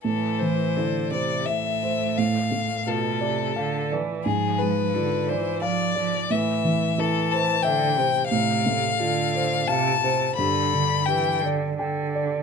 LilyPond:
<<
  \new Staff \with { instrumentName = "Violin" } { \time 3/4 \key a \minor \tempo 4 = 87 a'8 c''4 d''8 e''4 | f''4 a'4. r8 | gis'8 b'4 c''8 d''4 | e''4 a'8 a''8 g''4 |
\key f \lydian f''2 a''4 | b''4 g''8 r4. | }
  \new Staff \with { instrumentName = "Grand piano" } { \time 3/4 \key a \minor a,8 e8 e'8 c''8 e''8 c''8 | a,8 a8 f'8 d''8 f''8 d''8 | gis,8 gis8 eis'8 d''8 eis''8 d''8 | a,8 e8 e'8 c''8 e''8 c''8 |
\key f \lydian a,8 a8 f'8 c''8 f''8 c''8 | g,8 d8 g'8 d''8 g''8 d''8 | }
  \new Staff \with { instrumentName = "Cello" } { \clef bass \time 3/4 \key a \minor e4 d8 c8 a,4~ | a,4 b,8 c8 d8 e8 | eis4 d8 e8 eis8 eis8 | e4 e4 d8 c8 |
\key f \lydian c4 d4 c8 c8 | d4 e8 d8 d4 | }
>>